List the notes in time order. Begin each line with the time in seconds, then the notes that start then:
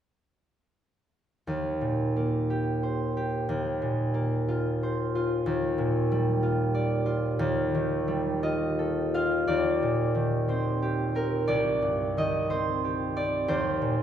1.47 D#2
1.81 A#2
2.16 A#3
2.50 G4
2.83 C5
3.17 G4
3.49 D#2
3.82 A#2
4.14 A#3
4.48 F4
4.83 C5
5.15 F4
5.46 D#2
5.78 A#2
6.12 G3
6.43 F4
6.74 D5
7.06 F4
7.39 D#2
7.75 D#3
8.08 G3
8.43 F4 D#5
8.79 A4
9.14 F4 F5
9.47 D#2 D5
9.83 A#2
10.15 D#3
10.48 C4 C5
10.82 G4
11.15 C4 A#4
11.48 C2 D5
11.82 G2
12.17 D#3 D#5
12.50 C4 C5
12.84 G4
13.16 C4 D5
13.48 D#2 C5
13.82 A#2